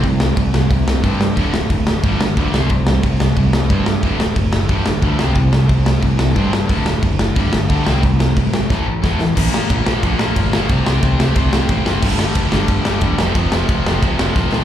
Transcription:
<<
  \new Staff \with { instrumentName = "Distorted electric guitar" } { \clef bass \time 4/4 \key c \lydian \tempo 4 = 180 <c g>8 <c g>8 <c g>8 <c g>8 <c g>8 <c g>8 <c g c'>8 <c g>8 | <d, a, d>8 <d, a,>8 <d, a,>8 <d, a,>8 <g, d g>8 <g, d>8 <g, d g>8 <c g c'>8 | <c g>8 <c g>8 <c g>8 <c g>8 <c g>8 <c g>8 <c g c'>8 <c g>8 | <d, a, d>8 <d, a,>8 <d, a,>8 <d, a,>8 <g, d g>8 <g, d>8 <g, d g>8 <c g c'>8 |
<c g>8 <c g>8 <c g>8 <c g>8 <c g>8 <c g>8 <c g c'>8 <c g>8 | <d, a, d>8 <d, a,>8 <d, a,>8 <d, a,>8 <g, d g>8 <g, d>8 <g, d g>8 <c g c'>8 | <c g>8 <c g>8 <c g>8 <c g>8 <a, e a>8 <a, e>8 <a, e a>8 <a, e>8 | <bes, f bes>8 <bes, f bes>8 <bes, f bes>8 <bes, f bes>8 <bes, f bes>8 <bes, f bes>8 <bes, f bes>8 <bes, f bes>8 |
<c g c'>8 <c g c'>8 <c g c'>8 <c g c'>8 <c g c'>8 <c g c'>8 <c g c'>8 <c g c'>8 | <g, d g>8 <g, d g>8 <g, d g>8 <g, d g>8 <g, d g>8 <g, d g>8 <g, d g>8 <f, c f>8 | <f, c f>8 <f, c f>8 <f, c f>8 <f, c f>8 <f, c f>8 <f, c f>8 <f, c f>8 <f, c f>8 | }
  \new Staff \with { instrumentName = "Distorted electric guitar" } { \clef bass \time 4/4 \key c \lydian <c g>8 <c g>8 <c g>8 <c g>8 <c g>8 <c g>8 <c g c'>8 <c g>8 | <d, a, d>8 <d, a,>8 <d, a,>8 <d, a,>8 <g, d g>8 <g, d>8 <g, d g>8 <c g c'>8 | <c g>8 <c g>8 <c g>8 <c g>8 <c g>8 <c g>8 <c g c'>8 <c g>8 | <d, a, d>8 <d, a,>8 <d, a,>8 <d, a,>8 <g, d g>8 <g, d>8 <g, d g>8 <c g c'>8 |
<c g>8 <c g>8 <c g>8 <c g>8 <c g>8 <c g>8 <c g c'>8 <c g>8 | <d, a, d>8 <d, a,>8 <d, a,>8 <d, a,>8 <g, d g>8 <g, d>8 <g, d g>8 <c g c'>8 | <c g>8 <c g>8 <c g>8 <c g>8 <a, e a>8 <a, e>8 <a, e a>8 <a, e>8 | <bes, f bes>8 <bes, f bes>8 <bes, f bes>8 <bes, f bes>8 <bes, f bes>8 <bes, f bes>8 <bes, f bes>8 <bes, f bes>8 |
<c g c'>8 <c g c'>8 <c g c'>8 <c g c'>8 <c g c'>8 <c g c'>8 <c g c'>8 <c g c'>8 | <g, d g>8 <g, d g>8 <g, d g>8 <g, d g>8 <g, d g>8 <g, d g>8 <g, d g>8 <f, c f>8 | <f, c f>8 <f, c f>8 <f, c f>8 <f, c f>8 <f, c f>8 <f, c f>8 <f, c f>8 <f, c f>8 | }
  \new Staff \with { instrumentName = "Picked electric bass" } { \clef bass \time 4/4 \key c \lydian c,4 c,4 c,8 c,8 g,8 g,8 | d,,4 d,,4 g,,8 g,,8 d,8 c,8 | c,4 c,4 c,8 c,8 g,8 g,8 | d,,4 fis,,4 g,,8 g,,8 d,8 c,8 |
c,4 c,4 c,8 c,8 g,8 g,8 | d,,4 fis,,4 g,,8 g,,8 d,8 c,8 | c,4 gis,,4 a,,8 a,,8 e,8 e,8 | bes,,4 bes,,8 bes,,8 bes,,8 bes,,8 g,,4 |
c,8 c,8 c,8 c,8 c,8 c,8 a,,8 fis,,8 | g,,4 g,,8 g,,8 g,,8 g,,8 e,,8 f,,8 | f,,8 f,,8 f,,8 f,,8 f,,8 f,,8 d,,8 a,,8 | }
  \new DrumStaff \with { instrumentName = "Drums" } \drummode { \time 4/4 <cymc bd>8 sn8 <cymc bd>8 sn8 <cymc bd>8 sn8 <cymc bd>8 sn8 | <cymc bd>8 sn8 <cymc bd>8 sn8 <cymc bd>8 sn8 <cymc bd>8 sn8 | <cymc bd>8 sn8 <cymc bd>8 sn8 <cymc bd>8 sn8 <cymc bd>8 sn8 | <cymc bd>8 sn8 <cymc bd>8 sn8 <cymc bd>8 sn8 <cymc bd>8 sn8 |
<cymc bd>8 sn8 <cymc bd>8 sn8 <cymc bd>8 sn8 <cymc bd>8 sn8 | <cymc bd>8 sn8 <cymc bd>8 sn8 <cymc bd>8 sn8 <cymc bd>8 sn8 | <cymc bd>8 sn8 <cymc bd>8 sn8 <bd sn>4 <bd sn>8 sn8 | <cymc bd>8 sn8 <bd cymr>8 sn8 <bd cymr>8 sn8 <bd cymr>8 sn8 |
<bd cymr>8 sn8 <bd cymr>8 sn8 <bd cymr>8 sn8 <bd cymr>8 sn8 | <cymc bd>8 sn8 <bd cymr>8 sn8 <bd cymr>8 sn8 <bd cymr>8 sn8 | <bd cymr>8 sn8 <bd cymr>8 sn8 <bd cymr>8 sn8 <bd sn>8 sn8 | }
>>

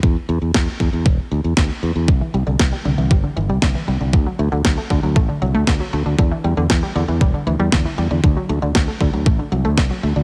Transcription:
<<
  \new Staff \with { instrumentName = "Synth arpeggio sound" } { \clef bass \time 4/4 \key d \mixolydian \tempo 4 = 117 r1 | d16 e16 g16 d16 e16 g16 d16 e16 g16 d16 e16 g16 d16 e16 g16 d16 | d16 fis16 a16 d16 fis16 a16 d16 fis16 a16 d16 fis16 a16 d16 fis16 a16 d16 | d16 e16 g16 d16 e16 g16 d16 e16 g16 d16 e16 g16 d16 e16 g16 d16 |
d16 fis16 a16 d16 fis16 a16 d16 fis16 a16 d16 fis16 a16 d16 fis16 a16 d16 | }
  \new Staff \with { instrumentName = "Fingered electric bass" } { \clef bass \time 4/4 \key d \mixolydian e,16 r16 e,16 e,16 e,16 r16 e,16 e,16 e,,16 r16 d,16 e,16 d,16 r16 e,16 e,16 | c,16 r16 c,16 c,16 c,16 r16 c,16 c,16 g,,16 r16 g,,16 c,16 c,16 r16 c,16 c,16 | d,16 r16 d,16 d,16 d,16 r16 d,16 d,16 a,,16 r16 c,16 d,16 d,16 r16 d,16 d,16 | e,16 r16 e,16 e,16 e,16 r16 e,16 e,16 e,,16 r16 d,16 e,16 e,16 r16 e,16 e,16 |
d,16 r16 d,16 d,16 d,16 r16 d,16 d,16 a,,16 r16 c,16 d,16 c,16 r16 d,16 d,16 | }
  \new DrumStaff \with { instrumentName = "Drums" } \drummode { \time 4/4 bd4 <bd sn>8 bd8 bd4 <bd sn>4 | bd4 <bd sn>4 bd4 <bd sn>4 | bd4 <bd sn>8 bd8 bd4 <bd sn>4 | bd4 <bd sn>4 bd4 <bd sn>4 |
bd4 <bd sn>8 bd8 bd4 <bd sn>4 | }
>>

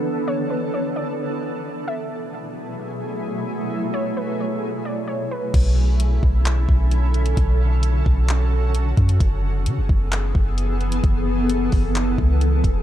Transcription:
<<
  \new Staff \with { instrumentName = "Synth pluck" } { \time 4/4 \key b \dorian \tempo 4 = 131 r8 cis''8 b'8 cis''8 d''2 | e''2. r4 | r8 cis''8 b'8 cis''4 d''8 cis''8 b'8 | r1 |
r1 | r1 | r1 | }
  \new Staff \with { instrumentName = "Ambient pad" } { \time 4/4 \key b \dorian << { <d e b a'>1 | <b, fis a gis'>1~ | <b, fis a gis'>1 | <d cis' a'>1~ |
<d cis' a'>1 | <e b a'>1~ | <e b a'>1 | } \\ { d'1 | e'1~ | e'1 | e'1 |
fis'1 | gis'1~ | gis'1 | } >> }
  \new Staff \with { instrumentName = "808-style bass" } { \clef bass \time 4/4 \key b \dorian r1 | r1 | r1 | b,,4. b,,4 b,,4. |
b,,4. b,,2 fis,8 | fis,,4 cis16 fis,,16 fis,,4 fis,,4. | fis,,4. fis,,4 cis,4 e,,8 | }
  \new DrumStaff \with { instrumentName = "Drums" } \drummode { \time 4/4 r4 r4 r4 r4 | r4 r4 r4 r4 | r4 r4 r4 r4 | <cymc hh bd>4 hh8 bd8 <hc hh>8 bd8 hh8 hh16 hh16 |
<hh bd>4 hh8 bd8 <hc hh>4 hh8 <hh bd>16 hh16 | <hh bd>4 hh8 bd8 <hc hh>8 bd8 hh8 hh16 hh16 | <hh bd>4 hh8 <hho bd>8 <hc hh>8 bd8 hh8 <hh bd>8 | }
>>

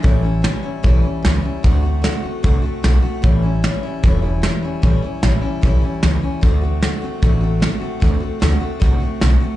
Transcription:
<<
  \new Staff \with { instrumentName = "Steel-string acoustic guitar" } { \time 4/4 \key a \mixolydian \tempo 4 = 150 <a, e g cis' e'>8 <g cis' e'>8 <e g cis' e'>8 <g cis' e'>8 <a, e g cis' e'>8 <g cis' e'>8 <e g cis' e'>8 <g cis' e'>8 | <d a c' fis'>8 <a c' fis'>8 <d a c' fis'>8 <a c' fis'>8 <d a c' fis'>8 <a c' fis'>8 <d a c' fis'>8 <a c' fis'>8 | <a, e g cis' e'>8 <g cis' e'>8 <e g cis' e'>8 <g cis' e'>8 <a, e g cis' e'>8 <g cis' e'>8 <e g cis' e'>8 <g cis' e'>8 | <a, e g cis' e'>8 <g cis' e'>8 <e g cis' e'>8 <g cis' e'>8 <a, e g cis' e'>8 <g cis' e'>8 <e g cis' e'>8 <g cis' e'>8 |
<d a c' fis'>8 <a c' fis'>8 <d a c' fis'>8 <a c' fis'>8 <d a c' fis'>8 <a c' fis'>8 <d a c' fis'>8 <a c' fis'>8 | <d a c' fis'>8 <a c' fis'>8 <d a c' fis'>8 <a c' fis'>8 <d a c' fis'>8 <a c' fis'>8 <d a c' fis'>8 <a c' fis'>8 | }
  \new Staff \with { instrumentName = "Upright bass" } { \clef bass \time 4/4 \key a \mixolydian a,,4. r8 b,,8 r8 cis,8 r8 | d,4. r8 c,8 r8 b,,8 r8 | a,,4. r8 e,,4. r8 | a,,8 r8 a,,8 r8 b,,8 r8 cis,8 r8 |
d,4. r8 a,,4. r8 | d,8 r8 d,8 r8 c,8 r8 b,,8 r8 | }
  \new DrumStaff \with { instrumentName = "Drums" } \drummode { \time 4/4 <hho bd>4 sn4 <hho bd>4 <hho sn>4 | <hho bd>4 sn4 <hho bd>4 <hho sn>4 | <hho bd>4 sn4 <hho bd>4 sn4 | <hho bd>4 sn4 <hho bd>4 <hho sn>4 |
<hho bd>4 <hho sn>4 <hho bd>4 <hho sn>4 | <hho bd>4 <hho sn>4 <hho bd>4 <hho sn>4 | }
>>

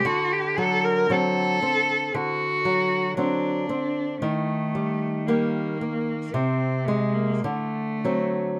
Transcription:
<<
  \new Staff \with { instrumentName = "Cello" } { \time 4/4 \key d \phrygian \tempo 4 = 57 fis'16 g'16 a'16 bes'16 a'4 fis'4 d'4 | a4 bes4 c'8 aes16 bes16 a4 | }
  \new Staff \with { instrumentName = "Nylon-string guitar" } { \clef bass \time 4/4 \key d \phrygian d8 fis8 <fis c'>8 c'8 d8 fis8 <fis c'>8 c'8 | ees8 g8 <g bes>8 bes8 c8 aes8 d8 <fis c'>8 | }
>>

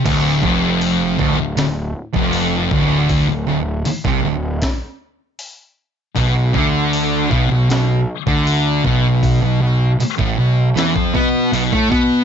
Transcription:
<<
  \new Staff \with { instrumentName = "Distorted electric guitar" } { \clef bass \time 4/4 \key d \dorian \tempo 4 = 78 d,8 f,4 d,16 d,16 d,8 r16 f,8. d,8~ | d,16 d,16 d,8 r16 c16 d,8 r2 | b,8 d4 b,16 b,16 b,8 r16 d8. b,8~ | b,16 b,16 b,8 r16 a,16 b,8 e16 f16 b8 b,16 a16 b8 | }
  \new Staff \with { instrumentName = "Distorted electric guitar" } { \clef bass \time 4/4 \key d \dorian d,8 f,4 d,16 d,16 d,8 r16 f,8. d,8~ | d,16 d,16 d,8 r16 c16 d,8 r2 | b,8 d4 b,16 b,16 b,8 r16 d8. b,8~ | b,16 b,16 b,8 r16 a,16 b,8 e16 f16 b8 b,16 a16 b8 | }
  \new Staff \with { instrumentName = "Picked electric bass" } { \clef bass \time 4/4 \key d \dorian d,,8 f,,4 d,,16 d,,16 d,,8 r16 f,,8. d,,8~ | d,,16 d,,16 d,,8 r16 c,16 d,,8 r2 | b,,8 d,4 b,,16 b,,16 b,,8 r16 d,8. b,,8~ | b,,16 b,,16 b,,8 r16 a,,16 b,,8 e,16 f,16 b,8 b,,16 a,16 b,8 | }
  \new DrumStaff \with { instrumentName = "Drums" } \drummode { \time 4/4 <cymc hho bd>8 bd8 hho8 bd8 <hho sn>8. bd16 hho8 bd8 | <hho bd>4 hho16 <bd sn>8. <hho bd sn>4 hho4 | <hho bd>8 bd8 hho8 bd8 <hho sn>8. bd16 hho8 bd8 | <hho bd>4 hho16 bd8. <hho sn>16 bd16 bd8 hho16 bd16 bd8 | }
>>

